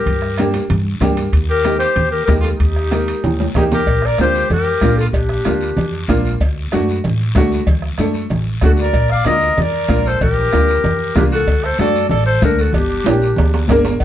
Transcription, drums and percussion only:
0.06 bombo low medium
0.06 low conga medium
0.06 high timbale medium
0.06 long guiro medium
0.22 bombo rim medium
0.38 bombo rim medium
0.38 high conga medium
0.38 high timbale medium
0.38 short guiro medium
0.54 high conga medium
0.54 high timbale medium
0.54 short guiro medium
0.70 low conga medium
0.70 high timbale medium
0.70 long guiro medium
1.01 bombo low medium
1.01 bombo rim medium
1.01 high conga medium
1.01 low conga medium
1.01 high timbale medium
1.01 low timbale medium
1.01 short guiro medium
1.17 high timbale medium
1.17 short guiro medium
1.33 bombo low medium
1.33 high timbale medium
1.33 long guiro medium
1.65 bombo rim medium
1.65 high conga medium
1.65 high timbale medium
1.65 short guiro medium
1.80 high timbale medium
1.80 short guiro medium
1.96 low conga medium
1.96 high timbale medium
1.96 long guiro medium
2.28 bombo low medium
2.28 bombo rim medium
2.28 high conga medium
2.28 high timbale medium
2.28 low timbale medium
2.28 short guiro medium
2.44 high timbale medium
2.44 short guiro medium
2.60 bombo low medium
2.60 high timbale medium
2.60 long guiro medium
2.76 bombo rim medium
2.92 bombo rim medium
2.92 high conga medium
2.92 high timbale medium
2.92 short guiro medium
3.08 high timbale medium
3.08 short guiro medium
3.24 low conga medium
3.24 high timbale medium
3.24 long guiro medium
3.40 high conga medium
3.40 high timbale medium
3.55 bombo low medium
3.55 bombo rim medium
3.55 low conga medium
3.55 low timbale medium
3.55 short guiro medium
3.72 low conga medium
3.72 low timbale medium
3.72 short guiro medium
3.87 bombo low medium
3.87 cowbell loud
3.87 long guiro medium
4.02 bombo rim medium
4.18 bombo rim medium
4.18 cowbell medium
4.18 high conga medium
4.18 short guiro medium
4.35 short guiro medium
4.50 cowbell medium
4.50 low conga medium
4.50 long guiro medium
4.81 bombo low medium
4.81 bombo rim medium
4.81 cowbell medium
4.81 high conga medium
4.81 short guiro medium
4.99 short guiro medium
5.13 bombo low medium
5.13 cowbell loud
5.13 long guiro medium
5.29 bombo rim medium
5.45 bombo rim medium
5.45 cowbell medium
5.45 high conga medium
5.45 short guiro medium
5.61 short guiro medium
5.77 cowbell medium
5.77 low conga medium
5.77 long guiro medium
6.09 bombo low medium
6.09 bombo rim medium
6.09 cowbell medium
6.09 high conga medium
6.09 short guiro medium
6.25 short guiro medium
6.40 bombo low medium
6.40 cowbell loud
6.40 long guiro medium
6.72 bombo rim medium
6.72 cowbell medium
6.72 high conga medium
6.72 short guiro medium
6.89 short guiro medium
7.04 cowbell medium
7.04 low conga medium
7.04 long guiro medium
7.35 bombo low medium
7.35 bombo rim medium
7.35 cowbell medium
7.35 high conga medium
7.35 low timbale medium
7.35 short guiro medium
7.52 short guiro medium
7.67 bombo low medium
7.67 cowbell loud
7.67 low conga medium
7.67 long guiro medium
7.82 bombo rim medium
7.98 bombo rim medium
7.98 cowbell medium
7.98 high conga medium
7.98 short guiro medium
8.14 short guiro medium
8.30 cowbell medium
8.30 low conga medium
8.30 long guiro medium
8.61 bombo low medium
8.61 bombo rim medium
8.61 cowbell medium
8.61 high conga medium
8.61 low timbale medium
8.61 short guiro medium
8.77 short guiro medium
8.93 bombo low medium
8.93 cowbell loud
8.93 long guiro medium
9.09 bombo rim medium
9.25 bombo rim medium
9.25 cowbell medium
9.25 high conga medium
9.25 short guiro medium
9.41 short guiro medium
9.58 cowbell medium
9.58 low conga medium
9.58 long guiro medium
9.89 bombo low medium
9.89 bombo rim medium
9.89 cowbell medium
9.89 high conga medium
9.89 short guiro medium
10.06 short guiro medium
10.21 bombo low medium
10.21 cowbell loud
10.21 low conga medium
10.21 long guiro medium
10.53 bombo rim medium
10.53 cowbell medium
10.53 high conga medium
10.53 short guiro medium
10.68 short guiro medium
10.84 cowbell medium
10.84 low conga medium
10.84 long guiro medium
11.16 bombo low medium
11.16 bombo rim medium
11.16 cowbell medium
11.16 high conga medium
11.16 low conga medium
11.16 low timbale medium
11.16 short guiro medium
11.32 short guiro medium
11.47 bombo low medium
11.47 cowbell loud
11.47 long guiro medium
11.64 bombo rim medium
11.79 bombo rim medium
11.79 cowbell medium
11.79 high conga medium
11.79 short guiro medium
11.96 short guiro medium
12.09 cowbell medium
12.09 low conga medium
12.09 long guiro medium
12.42 bombo low medium
12.42 bombo rim medium
12.42 cowbell medium
12.42 high conga medium
12.42 low timbale medium
12.42 short guiro medium
12.59 short guiro medium
12.73 bombo low medium
12.73 cowbell loud
12.73 low conga medium
12.73 long guiro medium
13.04 bombo rim medium
13.04 cowbell medium
13.04 high conga medium
13.04 high timbale loud
13.04 short guiro medium
13.22 short guiro medium
13.36 cowbell medium
13.36 low conga medium
13.36 low timbale medium
13.36 long guiro medium
13.54 low timbale loud
13.68 bombo low medium
13.68 bombo rim medium
13.68 cowbell medium
13.68 high conga medium
13.68 low timbale medium
13.68 short guiro medium
13.85 low timbale loud
13.85 short guiro medium
14.00 bombo low medium
14.00 cowbell loud
14.00 long guiro medium

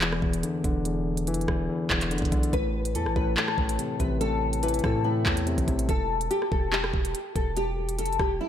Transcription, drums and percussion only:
0.01 clap loud
0.12 cross-stick loud
0.22 kick medium
0.33 closed hi-hat medium
0.43 closed hi-hat medium
0.64 kick medium
0.64 closed hi-hat medium
0.85 closed hi-hat medium
1.17 closed hi-hat medium
1.27 closed hi-hat medium
1.34 closed hi-hat medium
1.41 closed hi-hat soft
1.48 kick loud
1.48 cross-stick loud
1.90 kick medium
1.90 clap loud
2.01 clap medium
2.01 closed hi-hat medium
2.11 closed hi-hat medium
2.18 closed hi-hat medium
2.22 kick medium
2.22 closed hi-hat medium
2.32 kick medium
2.32 closed hi-hat medium
2.43 closed hi-hat medium
2.53 kick loud
2.53 closed hi-hat medium
2.85 closed hi-hat medium
2.95 closed hi-hat medium
3.06 cross-stick medium
3.16 kick loud
3.37 clap loud
3.48 cross-stick loud
3.58 kick medium
3.69 closed hi-hat medium
3.79 closed hi-hat medium
4.00 kick medium
4.00 closed hi-hat medium
4.21 closed hi-hat medium
4.53 closed hi-hat medium
4.63 closed hi-hat medium
4.68 closed hi-hat medium
4.74 closed hi-hat medium
4.79 closed hi-hat medium
4.84 kick loud
4.84 cross-stick loud
5.26 kick medium
5.26 clap loud
5.37 closed hi-hat medium
5.47 closed hi-hat medium
5.58 kick medium
5.58 closed hi-hat medium
5.68 kick medium
5.68 closed hi-hat medium
5.79 closed hi-hat medium
5.89 kick loud
5.89 closed hi-hat medium
6.21 closed hi-hat medium
6.31 closed hi-hat medium
6.42 cross-stick medium
6.52 kick loud
6.73 clap loud
6.84 cross-stick loud
6.94 kick medium
7.05 closed hi-hat medium
7.15 closed hi-hat medium
7.36 kick medium
7.36 closed hi-hat medium
7.57 closed hi-hat medium
7.89 closed hi-hat medium
7.99 closed hi-hat medium
8.06 closed hi-hat medium
8.13 closed hi-hat soft
8.19 kick loud
8.19 cross-stick medium

